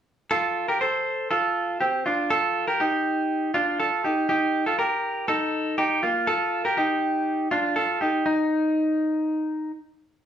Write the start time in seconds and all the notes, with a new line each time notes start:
0.31 F4 A4
0.68 G4 A#4
0.81 A4 C5
1.31 F4 A4
1.81 C4 G4
2.06 D4 F4
2.30 F4 A4
2.68 G4 A#4
2.80 D#4 G4
3.54 D4 F4
3.80 F4 A4
4.04 D#4 G4
4.29 D#4 G4
4.66 F4 A4
4.79 G4 A#4
5.28 D#4 A4
5.78 D#4 G4
6.03 A#3 F4
6.27 F4 A4
6.65 G4 A#4
6.77 D#4 G4
7.51 D4 F4
7.76 F4 A4
8.01 D#4 G4
8.26 D#4